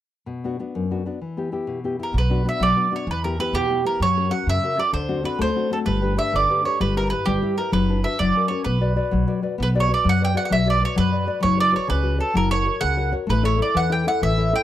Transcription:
0.26 nylon-string guitar B2
0.44 nylon-string guitar B3 D4 F#4
0.59 nylon-string guitar B3 D4 F#4
0.75 nylon-string guitar F#2
0.91 nylon-string guitar B3 D4 F#4
1.06 nylon-string guitar B3 D4 F#4
1.21 nylon-string guitar E3
1.37 nylon-string guitar B3 E4 G4
1.52 nylon-string guitar B3 E4 G4
1.67 nylon-string guitar B2
1.84 nylon-string guitar B3 E4 G4
1.99 nylon-string guitar B3 E4 G4, mandolin A#4
2.13 upright bass B1, nylon-string guitar B2
2.18 mandolin B4
2.30 nylon-string guitar B3 D4 F#4
2.45 nylon-string guitar B3 D4 F#4, mandolin E5
2.60 upright bass B1, nylon-string guitar F#3, mandolin D5
2.76 nylon-string guitar B3 D4 F#4
2.91 nylon-string guitar B3 D4 F#4
2.96 mandolin C#5
3.07 upright bass E2, nylon-string guitar E3, mandolin B4
3.24 nylon-string guitar B3 E4 G4, mandolin A#4
3.39 nylon-string guitar B3 E4 G4, mandolin B4
3.53 upright bass E2, nylon-string guitar B2, mandolin G4
3.70 nylon-string guitar B3 E4 G4
3.85 nylon-string guitar B3 E4 G4, mandolin A#4
4.00 upright bass F#2, nylon-string guitar F#3, mandolin C#5
4.17 nylon-string guitar C#4 F#4 A#4
4.30 nylon-string guitar C#4 F#4 A#4, mandolin F#5
4.47 upright bass F#2, nylon-string guitar C#3, mandolin E5
4.63 nylon-string guitar C#4 F#4 A#4
4.78 nylon-string guitar C#4 F#4 A#4, mandolin D5
4.92 upright bass D2, nylon-string guitar D3, mandolin C5
5.09 nylon-string guitar C4 D4 F#4
5.23 nylon-string guitar C4 D4 F#4, mandolin B4
5.39 upright bass D2, nylon-string guitar A3, mandolin C5
5.55 nylon-string guitar C4 D4 F#4
5.70 nylon-string guitar C4 D4 F#4, mandolin A4
5.86 upright bass G1, nylon-string guitar G3, mandolin B4
6.01 nylon-string guitar D4 G4 B4
6.17 nylon-string guitar D4 G4 B4, mandolin E5
6.32 upright bass G1, nylon-string guitar D3, mandolin D5
6.49 nylon-string guitar D4 G4 B4
6.64 nylon-string guitar D4 G4 B4, mandolin C#5
6.80 upright bass G1, nylon-string guitar G3, mandolin B4
6.97 nylon-string guitar E4 G4 B4, mandolin A#4
7.10 nylon-string guitar E4 G4 B4, mandolin B4
7.26 upright bass G1, nylon-string guitar G3, mandolin G4
7.42 nylon-string guitar E4 G4 B4
7.58 nylon-string guitar E4 G4 B4, mandolin A#4
7.72 upright bass F#1, nylon-string guitar F#3, mandolin B4
7.89 nylon-string guitar D4 F#4 B4
8.03 nylon-string guitar D4 F#4 B4, mandolin E5
8.19 upright bass F#1, nylon-string guitar F#3, mandolin D5
8.35 nylon-string guitar C#4 F#4 A#4
8.48 nylon-string guitar C#4 F#4 A#4, mandolin C#5
8.64 upright bass B1, nylon-string guitar B3, mandolin B4
8.81 nylon-string guitar F#4 B4 D5
8.96 nylon-string guitar F#4 B4 D5
9.11 upright bass B1, nylon-string guitar F#3
9.27 nylon-string guitar F#4 B4 D5
9.42 nylon-string guitar F#4 B4 D5
9.58 upright bass B1, nylon-string guitar B3
9.63 mandolin B4
9.75 nylon-string guitar F#4 B4 D5
9.80 mandolin C#5
9.89 nylon-string guitar F#4 B4 D5
9.94 mandolin D5
10.04 upright bass F#2, nylon-string guitar F#3
10.09 mandolin F#5
10.21 nylon-string guitar F#4 B4 D5, mandolin G5
10.34 nylon-string guitar F#4 B4 D5, mandolin F#5
10.45 mandolin F#5
10.50 upright bass B1, nylon-string guitar F#3, mandolin E5
10.66 nylon-string guitar F#4 B4 D5
10.70 mandolin D5
10.81 nylon-string guitar F#4 B4 D5
10.85 mandolin C#5
10.96 upright bass F#2, nylon-string guitar F#3, mandolin B4
11.11 nylon-string guitar F#4 B4 D5
11.27 nylon-string guitar F#4 B4 D5
11.40 upright bass F#1, nylon-string guitar F#3, mandolin C#5
11.57 nylon-string guitar F#4 B4 C#5, mandolin D5
11.72 nylon-string guitar F#4 B4 C#5, mandolin C#5
11.88 upright bass C#2, nylon-string guitar C#3, mandolin B4
12.03 nylon-string guitar F#4 B4 C#5
12.18 nylon-string guitar F#4 B4 C#5, mandolin A4
12.34 upright bass F#1, nylon-string guitar F#3, mandolin A#4
12.51 nylon-string guitar F#4 A#4 C#5, mandolin C#5
12.66 nylon-string guitar F#4 A#4 C#5
12.80 upright bass C#2, nylon-string guitar C#3, mandolin F#5
12.97 nylon-string guitar F#4 A#4 C#5
13.12 nylon-string guitar F#4 A#4 C#5
13.27 upright bass A1, nylon-string guitar A3, mandolin B4
13.43 nylon-string guitar E4 A4 C#5, mandolin C#5
13.58 nylon-string guitar E4 A4 C#5
13.62 mandolin D5
13.74 upright bass E2, nylon-string guitar E3, mandolin F#5
13.90 nylon-string guitar E4 A4 C#5, mandolin G5
14.06 nylon-string guitar E4 A4 C#5, mandolin F#5
14.21 upright bass A1, nylon-string guitar E3, mandolin E5
14.38 nylon-string guitar E4 A4 C#5
14.53 nylon-string guitar E4 A4 C#5, mandolin G5

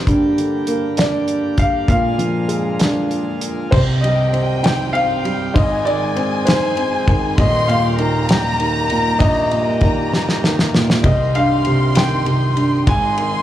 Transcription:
Already playing: pipe organ G3
0.06 upright piano G2, pipe organ D3 A#3 G4, kick, closed hi-hat
0.38 upright piano D3, closed hi-hat
0.67 upright piano A#3, closed hi-hat
0.97 upright piano D4, grand piano D5, snare, closed hi-hat
1.28 closed hi-hat
1.58 grand piano F5, kick, closed hi-hat
1.87 upright piano A#2, pipe organ G#3 A#3 F4, grand piano F5, kick, closed hi-hat
2.18 upright piano F3, closed hi-hat
2.48 upright piano G#3, closed hi-hat
2.80 upright piano D4, snare, closed hi-hat
3.11 closed hi-hat
3.41 closed hi-hat
3.71 upright piano C2 C3, pipe organ D#3 G3 C4 G4, grand piano C5, violin section G5, kick, crash
4.01 upright piano G3, grand piano D#5, ride
4.33 upright piano C4, ride
4.63 upright piano D#4, grand piano G5, snare, ride
4.93 upright piano C4, grand piano F5, ride
5.25 upright piano G3, ride
5.54 upright piano G#1 G#2, pipe organ G#3 G#4, grand piano D#5, violin section G#5, kick, ride
5.85 upright piano D#3, grand piano D5, ride
6.16 upright piano C4, ride
6.45 upright piano D#4, grand piano C5, snare, ride
6.77 upright piano C4, ride
7.08 upright piano D#3, kick, ride
7.37 upright piano D#1 D#2, pipe organ G3 A#3 G4, grand piano D#5, violin section C6, kick, ride
7.68 upright piano A#2, grand piano F5, ride
7.98 upright piano D#3, violin section A#5, ride
8.29 upright piano G3, grand piano G5, snare, ride
8.60 upright piano D#3, ride
8.90 upright piano A#2, ride
9.19 upright piano A#1, grand piano D#5, kick, ride
9.51 upright piano A#2, ride
9.81 upright piano D#3, violin section A#5, kick, ride
10.13 upright piano G3, snare
10.29 snare
10.44 upright piano D#3, snare
10.59 snare
10.75 upright piano A#2, snare
10.90 snare
11.03 upright piano C2, pipe organ C4, grand piano D#5, violin section C6, kick, ride
11.35 upright piano G2, grand piano F5, ride
11.65 upright piano C3, ride
11.95 upright piano D#3, grand piano G5, snare, ride
12.26 upright piano C3, ride
12.56 upright piano G2, ride
12.87 upright piano G#1 G#2, pipe organ G#3 G#4, grand piano G#5, violin section C6, kick, ride
13.18 upright piano D#3, ride

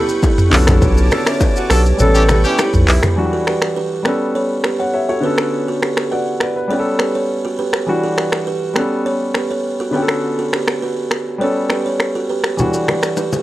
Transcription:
Already playing: grand piano G3 B3 C#4 A4, analog synth pad B4 G5 C#6
0.09 shaker
0.23 kalimba E4 A4, kick, high bongo, shaker
0.38 mid tom, shaker
0.50 sub bass B1, grand piano D3 B3 C#4, analog synth pad C#4 A5 D6, kalimba F#4 B4, clap, open hi-hat, shaker
0.55 grand piano A4
0.67 finger snap, kick, cross-stick, mid tom, low bongo, shaker
0.82 kalimba F#4 B4, kick, low conga, shaker
0.97 shaker
1.11 alto saxophone A4, kalimba B4 D5, finger snap, cross-stick, low bongo, shaker
1.26 kalimba C#5 E5, finger snap, cross-stick, shaker
1.40 kalimba B4 D5, kick, high bongo, shaker
1.56 alto saxophone F#4, shaker
1.70 sub bass B1, horn section D4 F#4 A4, kalimba G4 B4, alto saxophone A4, finger snap, cross-stick, open hi-hat, shaker
1.86 shaker
1.97 sub bass A1, grand piano G3 B3 C#4, alto saxophone A4, kalimba A4 C#5, analog synth pad B4 G5 C#6, low conga, shaker
2.02 grand piano A4
2.15 horn section C#4 E4 G4, shaker
2.29 kalimba G4 B4, finger snap, cross-stick, high bongo, low bongo, low conga, shaker
2.44 horn section C#4 E4 G4, shaker
2.58 kalimba E4 A4, alto saxophone G4, finger snap, cross-stick, high bongo, shaker
2.74 sub bass B1, mid tom, shaker
2.88 sub bass B1, alto saxophone E4, kalimba G4 B4, clap, open hi-hat, shaker
3.03 finger snap, cross-stick, mid tom, low bongo, shaker
3.16 grand piano E3 F#3 D4 F#4
3.23 grand piano G3
3.33 kalimba F#4 A4
3.47 kalimba G4 B4, finger snap, cross-stick
3.62 finger snap, cross-stick
3.77 kalimba G4 B4
4.03 grand piano G3 B3 C#4, finger snap, cross-stick
4.08 grand piano A4
4.35 kalimba A4 C#5
4.64 kalimba G4 B4, finger snap, cross-stick
4.80 kalimba A4 C#5, grand piano F#5
4.94 grand piano C#5 E5
5.09 kalimba F#4 A4, grand piano A4 C#5
5.21 grand piano D3 B3 C#4, kalimba F#4 B4
5.26 grand piano A4
5.38 finger snap, cross-stick
5.68 kalimba F#4 A4
5.82 kalimba G4 B4, finger snap, cross-stick
5.97 finger snap, cross-stick
6.11 kalimba F#4 B4, grand piano D5 F#5
6.40 grand piano B4 D5, finger snap, cross-stick
6.56 grand piano B4
6.68 grand piano G3 B3 C#4, kalimba A4 C#5
6.73 grand piano G4
6.79 grand piano A4
6.99 kalimba G4 B4, finger snap, cross-stick
7.15 kalimba A4 C#5
7.45 kalimba F#4 A4
7.59 kalimba G4 B4
7.73 finger snap, cross-stick
7.87 grand piano E3 G3 D4 F#4
8.04 kalimba F#4 A4
8.18 kalimba G4 B4, finger snap, cross-stick
8.32 finger snap, cross-stick
8.47 kalimba G4 B4
8.74 grand piano G3 B3 C#4, finger snap, cross-stick
8.79 grand piano A4
9.06 kalimba A4 C#5
9.34 kalimba G4 B4, finger snap, cross-stick
9.51 kalimba A4 C#5
9.80 kalimba F#4 A4
9.91 grand piano D3 B3 C#4, kalimba F#4 B4
9.96 grand piano G4
10.03 grand piano A4
10.08 finger snap, cross-stick
10.39 kalimba F#4 A4
10.53 kalimba G4 B4, finger snap, cross-stick
10.68 finger snap, cross-stick
10.82 kalimba F#4 B4
11.11 finger snap, cross-stick
11.38 grand piano G3 B3 C#4, kalimba A4 C#5
11.43 grand piano A4
11.70 kalimba G4 B4, finger snap, cross-stick
11.86 kalimba A4 C#5
12.00 finger snap, cross-stick
12.15 kalimba F#4 A4
12.29 kalimba G4 B4
12.44 finger snap, cross-stick
12.57 grand piano E3 G3 D4 F#4, low conga, shaker
12.74 kalimba F#4 A4, shaker
12.88 kalimba G4 B4, finger snap, cross-stick, low bongo
13.03 finger snap, cross-stick, shaker
13.17 kalimba G4 B4, high bongo, shaker
13.33 low bongo, shaker

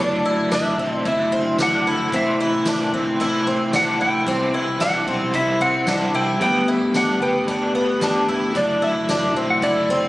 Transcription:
Already playing: picked electric bass F#1, tonewheel organ D3 F#3 A3 E4, overdriven electric guitar F#3
0.00 overdriven electric guitar A3 D4 E4 A4, twelve-string acoustic guitar D4, electric slide guitar D5
0.25 twelve-string acoustic guitar E4
0.38 picked electric bass F#1
0.51 picked electric bass F#1, twelve-string acoustic guitar D4, electric slide guitar E5, snare, closed hi-hat, tambourine
0.78 picked electric bass E1, twelve-string acoustic guitar C4, overdriven electric guitar E4 A4, kick
0.82 overdriven electric guitar D4
0.97 electric slide guitar D5
1.04 picked electric bass F#1, overdriven electric guitar A3 D4 E4, twelve-string acoustic guitar E4, kick, closed hi-hat
1.08 overdriven electric guitar A4, electric slide guitar E5
1.32 picked electric bass F#1, twelve-string acoustic guitar C4, kick
1.58 picked electric bass F#1, overdriven electric guitar A3 D4 E4, twelve-string acoustic guitar D4, snare, closed hi-hat, tambourine
1.62 overdriven electric guitar A4, electric slide guitar F#5
1.86 picked electric bass F#1, twelve-string acoustic guitar E4
2.12 picked electric bass A1, overdriven electric guitar A2 E3 A3 C4 E4 C5, tonewheel organ C3 E3, twelve-string acoustic guitar C4, kick, closed hi-hat
2.16 electric slide guitar E5
2.40 twelve-string acoustic guitar E4
2.52 picked electric bass A1
2.65 picked electric bass A1, twelve-string acoustic guitar D4, snare, closed hi-hat, tambourine
2.92 picked electric bass G1, twelve-string acoustic guitar C4, overdriven electric guitar C4 E4 C5, kick
2.97 overdriven electric guitar A3
3.19 picked electric bass A1, overdriven electric guitar A3 C4 E4, twelve-string acoustic guitar E4, kick, closed hi-hat
3.23 overdriven electric guitar C5
3.46 picked electric bass A1, twelve-string acoustic guitar C4, kick
3.73 picked electric bass A1, overdriven electric guitar A3 C4 E4, twelve-string acoustic guitar D4, electric slide guitar F#5, snare, closed hi-hat, tambourine
3.77 overdriven electric guitar C5
4.00 picked electric bass A1, twelve-string acoustic guitar E4, electric slide guitar G5, kick
4.26 picked electric bass C2, overdriven electric guitar C3 E3 G3 C4 E4 C5, tonewheel organ G3, twelve-string acoustic guitar C4, kick, closed hi-hat
4.54 twelve-string acoustic guitar E4
4.67 picked electric bass C2
4.80 picked electric bass C2, twelve-string acoustic guitar D4, electric slide guitar F#5, snare, closed hi-hat, tambourine
5.06 picked electric bass B1, twelve-string acoustic guitar C4, overdriven electric guitar C4 E4 C5, kick
5.11 overdriven electric guitar G3
5.32 picked electric bass C2, overdriven electric guitar G3 C4 E4, twelve-string acoustic guitar E4, electric slide guitar E5, kick, closed hi-hat
5.37 overdriven electric guitar C5
5.60 picked electric bass C2, twelve-string acoustic guitar C4, electric slide guitar F#5, kick
5.86 picked electric bass C2, overdriven electric guitar G3 C4 E4, twelve-string acoustic guitar D4, snare, closed hi-hat, tambourine
5.90 overdriven electric guitar C5
6.14 picked electric bass C2, twelve-string acoustic guitar E4, electric slide guitar G5
6.40 picked electric bass G1, tonewheel organ D3 A3 B3 G4, overdriven electric guitar G3 A3 D4 G4 B4, twelve-string acoustic guitar B3, electric slide guitar G5, kick, closed hi-hat
6.68 twelve-string acoustic guitar E4
6.82 picked electric bass G1
6.94 picked electric bass G1, twelve-string acoustic guitar D4, electric slide guitar F#5, snare, closed hi-hat, tambourine
7.20 picked electric bass F#1, twelve-string acoustic guitar B3, overdriven electric guitar G4 B4, electric slide guitar G5, kick
7.24 overdriven electric guitar D4
7.46 picked electric bass G1, overdriven electric guitar A3 D4 G4, twelve-string acoustic guitar D4, kick, closed hi-hat
7.51 overdriven electric guitar B4
7.75 picked electric bass G1, twelve-string acoustic guitar B3, kick
8.00 picked electric bass G1, overdriven electric guitar A3 D4 G4, twelve-string acoustic guitar D4, snare, closed hi-hat, tambourine
8.05 overdriven electric guitar B4
8.28 picked electric bass G1, twelve-string acoustic guitar E4, kick
8.54 picked electric bass F#1, tonewheel organ D3 F#3 E4, overdriven electric guitar F#3 A3 D4 E4 A4, twelve-string acoustic guitar D4, electric slide guitar D5, kick, closed hi-hat
8.82 twelve-string acoustic guitar E4, electric slide guitar E5
8.96 picked electric bass F#1
9.09 picked electric bass F#1, twelve-string acoustic guitar D4, snare, closed hi-hat, tambourine
9.34 picked electric bass E1, twelve-string acoustic guitar C4, overdriven electric guitar E4 A4, kick
9.39 overdriven electric guitar D4
9.50 electric slide guitar F#5
9.61 picked electric bass F#1, overdriven electric guitar A3 D4 E4, twelve-string acoustic guitar E4, electric slide guitar D5, kick, closed hi-hat
9.66 overdriven electric guitar A4
9.89 picked electric bass F#1, twelve-string acoustic guitar C4, kick

